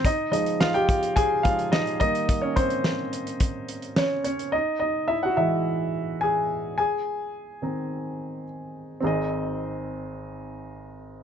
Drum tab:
HH |x-xx-xxxx-xx-xxx|x-xx--xxx-xx--xx|----------------|----------------|
SD |----o-------o---|----o-------o---|----------------|----------------|
BD |o-----o-o-o---o-|o-o-----o-------|----------------|----------------|

HH |----------------|
SD |----------------|
BD |----------------|